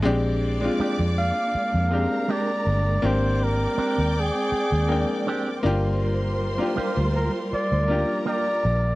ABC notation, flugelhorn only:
X:1
M:4/4
L:1/8
Q:"Swing 16ths" 1/4=80
K:Bbmix
V:1 name="Flugelhorn"
z3 f3 d2 | c B2 A4 z | z3 B d2 d2 |]